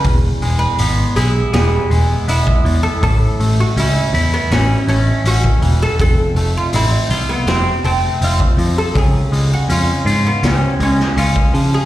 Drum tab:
HH |o-o-o-o-o-o-o-o-|o-o-o-o-o-o-o-o-|o-o-o-o-o-o-o-o-|o-o-o-o-o-o-o-o-|
SD |--------o-------|--------o-------|--------o-------|--------o--o----|
BD |o------------o--|o------------o--|o------------o--|o------------o--|